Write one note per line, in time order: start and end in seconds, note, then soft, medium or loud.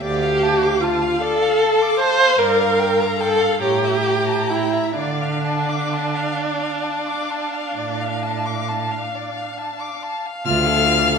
0.00 1.01 D2 medium
0.00 0.82 G4 medium
0.00 0.24 D5 medium
0.00 3.58 F5 medium
0.23 0.44 F5 medium
0.43 0.64 A5 medium
0.63 0.85 D6 medium
0.80 1.21 F4 medium
0.80 1.04 A5 medium
1.02 1.23 F5 medium
1.21 1.99 A4 loud
1.21 1.44 D5 medium
1.42 1.63 F5 medium
1.61 1.83 A5 medium
1.82 2.02 D6 medium
2.00 2.40 C5 loud
2.00 2.21 A5 medium
2.20 2.40 F5 medium
2.38 3.41 G2 medium
2.38 3.19 A#4 medium
2.38 2.62 D5 medium
2.61 2.81 F5 medium
2.80 3.02 G5 medium
3.00 3.22 A#5 medium
3.19 3.61 A4 medium
3.19 3.43 G5 medium
3.41 3.61 F5 medium
3.61 4.73 A2 medium
3.61 4.52 G4 medium
3.61 3.86 C#5 medium
3.61 4.94 A#5 medium
3.84 4.08 E5 medium
4.07 4.29 G5 medium
4.28 4.51 A5 medium
4.49 4.96 E4 medium
4.49 4.75 G5 soft
4.73 4.97 E5 medium
4.97 6.16 D3 medium
4.97 9.98 D4 medium
4.97 5.23 D5 medium
4.97 10.21 F5 medium
5.22 5.46 F5 medium
5.44 5.70 A5 medium
5.69 5.94 D6 soft
5.93 6.17 A5 soft
6.16 6.40 F5 soft
6.39 6.62 D5 soft
6.61 6.85 F5 soft
6.83 7.08 A5 soft
7.07 7.32 D6 soft
7.31 7.56 A5 soft
7.54 7.76 F5 soft
7.76 8.90 A2 medium
7.76 8.03 D5 soft
8.01 8.24 F5 soft
8.23 8.47 A5 soft
8.46 8.70 D6 soft
8.69 8.92 A5 soft
8.91 9.16 F5 soft
9.15 9.38 D5 soft
9.36 9.59 F5 soft
9.58 9.82 A5 soft
9.80 10.04 D6 soft
10.03 10.28 A5 soft
10.26 10.46 F5 medium
10.45 11.18 D2 medium
10.45 10.68 F4 medium
10.45 11.18 F5 loud
10.45 11.18 F6 loud
10.66 10.88 A4 medium
10.87 11.10 F4 medium
11.08 11.18 A4 medium